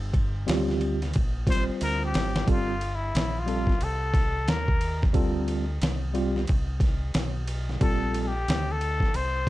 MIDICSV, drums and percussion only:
0, 0, Header, 1, 2, 480
1, 0, Start_track
1, 0, Key_signature, -2, "minor"
1, 0, Tempo, 666667
1, 1783, Time_signature, 4, 2, 24, 8
1, 6834, End_track
2, 0, Start_track
2, 0, Title_t, "Drums"
2, 98, Note_on_c, 9, 36, 94
2, 100, Note_on_c, 9, 51, 57
2, 170, Note_off_c, 9, 36, 0
2, 172, Note_off_c, 9, 51, 0
2, 345, Note_on_c, 9, 44, 54
2, 345, Note_on_c, 9, 51, 76
2, 356, Note_on_c, 9, 38, 108
2, 417, Note_off_c, 9, 44, 0
2, 417, Note_off_c, 9, 51, 0
2, 428, Note_off_c, 9, 38, 0
2, 493, Note_on_c, 9, 38, 34
2, 565, Note_off_c, 9, 38, 0
2, 582, Note_on_c, 9, 51, 50
2, 654, Note_off_c, 9, 51, 0
2, 735, Note_on_c, 9, 51, 39
2, 738, Note_on_c, 9, 38, 33
2, 807, Note_off_c, 9, 51, 0
2, 810, Note_off_c, 9, 38, 0
2, 817, Note_on_c, 9, 51, 66
2, 834, Note_on_c, 9, 36, 88
2, 889, Note_off_c, 9, 51, 0
2, 906, Note_off_c, 9, 36, 0
2, 1057, Note_on_c, 9, 36, 105
2, 1060, Note_on_c, 9, 51, 60
2, 1078, Note_on_c, 9, 38, 35
2, 1129, Note_off_c, 9, 36, 0
2, 1132, Note_off_c, 9, 51, 0
2, 1150, Note_off_c, 9, 38, 0
2, 1302, Note_on_c, 9, 44, 51
2, 1302, Note_on_c, 9, 51, 76
2, 1374, Note_off_c, 9, 44, 0
2, 1374, Note_off_c, 9, 51, 0
2, 1541, Note_on_c, 9, 51, 65
2, 1550, Note_on_c, 9, 38, 99
2, 1613, Note_off_c, 9, 51, 0
2, 1622, Note_off_c, 9, 38, 0
2, 1697, Note_on_c, 9, 38, 96
2, 1769, Note_off_c, 9, 38, 0
2, 1783, Note_on_c, 9, 36, 103
2, 1783, Note_on_c, 9, 51, 68
2, 1855, Note_off_c, 9, 36, 0
2, 1855, Note_off_c, 9, 51, 0
2, 2024, Note_on_c, 9, 51, 51
2, 2096, Note_off_c, 9, 51, 0
2, 2268, Note_on_c, 9, 44, 52
2, 2268, Note_on_c, 9, 51, 75
2, 2280, Note_on_c, 9, 38, 109
2, 2340, Note_off_c, 9, 44, 0
2, 2340, Note_off_c, 9, 51, 0
2, 2352, Note_off_c, 9, 38, 0
2, 2504, Note_on_c, 9, 51, 46
2, 2576, Note_off_c, 9, 51, 0
2, 2642, Note_on_c, 9, 36, 75
2, 2660, Note_on_c, 9, 38, 29
2, 2714, Note_off_c, 9, 36, 0
2, 2732, Note_off_c, 9, 38, 0
2, 2741, Note_on_c, 9, 51, 68
2, 2813, Note_off_c, 9, 51, 0
2, 2978, Note_on_c, 9, 36, 97
2, 2984, Note_on_c, 9, 51, 52
2, 3002, Note_on_c, 9, 38, 33
2, 3050, Note_off_c, 9, 36, 0
2, 3056, Note_off_c, 9, 51, 0
2, 3074, Note_off_c, 9, 38, 0
2, 3223, Note_on_c, 9, 44, 49
2, 3223, Note_on_c, 9, 51, 63
2, 3228, Note_on_c, 9, 38, 121
2, 3295, Note_off_c, 9, 44, 0
2, 3295, Note_off_c, 9, 51, 0
2, 3300, Note_off_c, 9, 38, 0
2, 3371, Note_on_c, 9, 36, 99
2, 3443, Note_off_c, 9, 36, 0
2, 3462, Note_on_c, 9, 51, 60
2, 3534, Note_off_c, 9, 51, 0
2, 3617, Note_on_c, 9, 38, 30
2, 3622, Note_on_c, 9, 36, 83
2, 3689, Note_off_c, 9, 38, 0
2, 3694, Note_off_c, 9, 36, 0
2, 3701, Note_on_c, 9, 51, 70
2, 3703, Note_on_c, 9, 36, 109
2, 3773, Note_off_c, 9, 51, 0
2, 3775, Note_off_c, 9, 36, 0
2, 3944, Note_on_c, 9, 51, 50
2, 4016, Note_off_c, 9, 51, 0
2, 4187, Note_on_c, 9, 44, 52
2, 4187, Note_on_c, 9, 51, 76
2, 4198, Note_on_c, 9, 38, 106
2, 4259, Note_off_c, 9, 44, 0
2, 4259, Note_off_c, 9, 51, 0
2, 4270, Note_off_c, 9, 38, 0
2, 4426, Note_on_c, 9, 51, 45
2, 4498, Note_off_c, 9, 51, 0
2, 4580, Note_on_c, 9, 38, 35
2, 4652, Note_off_c, 9, 38, 0
2, 4661, Note_on_c, 9, 51, 65
2, 4675, Note_on_c, 9, 36, 78
2, 4733, Note_off_c, 9, 51, 0
2, 4747, Note_off_c, 9, 36, 0
2, 4897, Note_on_c, 9, 36, 99
2, 4901, Note_on_c, 9, 51, 54
2, 4919, Note_on_c, 9, 38, 32
2, 4969, Note_off_c, 9, 36, 0
2, 4973, Note_off_c, 9, 51, 0
2, 4991, Note_off_c, 9, 38, 0
2, 5142, Note_on_c, 9, 44, 45
2, 5142, Note_on_c, 9, 51, 74
2, 5147, Note_on_c, 9, 38, 118
2, 5214, Note_off_c, 9, 44, 0
2, 5214, Note_off_c, 9, 51, 0
2, 5219, Note_off_c, 9, 38, 0
2, 5382, Note_on_c, 9, 51, 62
2, 5454, Note_off_c, 9, 51, 0
2, 5540, Note_on_c, 9, 38, 29
2, 5612, Note_off_c, 9, 38, 0
2, 5623, Note_on_c, 9, 51, 69
2, 5624, Note_on_c, 9, 36, 106
2, 5695, Note_off_c, 9, 51, 0
2, 5696, Note_off_c, 9, 36, 0
2, 5864, Note_on_c, 9, 51, 54
2, 5936, Note_off_c, 9, 51, 0
2, 6108, Note_on_c, 9, 44, 48
2, 6108, Note_on_c, 9, 51, 72
2, 6120, Note_on_c, 9, 38, 107
2, 6180, Note_off_c, 9, 44, 0
2, 6180, Note_off_c, 9, 51, 0
2, 6192, Note_off_c, 9, 38, 0
2, 6343, Note_on_c, 9, 51, 47
2, 6415, Note_off_c, 9, 51, 0
2, 6482, Note_on_c, 9, 36, 78
2, 6499, Note_on_c, 9, 38, 31
2, 6554, Note_off_c, 9, 36, 0
2, 6571, Note_off_c, 9, 38, 0
2, 6582, Note_on_c, 9, 51, 69
2, 6654, Note_off_c, 9, 51, 0
2, 6834, End_track
0, 0, End_of_file